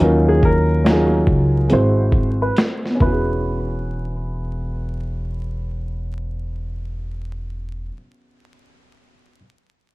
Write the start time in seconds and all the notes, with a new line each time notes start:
Already playing: F#3
0.00 D#2 C#4 D#4 F4 A#4, closed hi-hat
0.29 G#4
0.43 A#4, kick
0.84 F#3 C#4 D#4, snare, closed hi-hat
0.89 F4 G#4
1.27 C#2, kick
1.69 G#1 G#3 C4 E4, closed hi-hat
1.73 F#4 C5
2.13 kick
2.42 B4
2.57 snare, closed hi-hat
2.85 B3, snare
2.95 C#4
3.00 E1 E4 B4, kick
3.06 F#4
3.11 G#4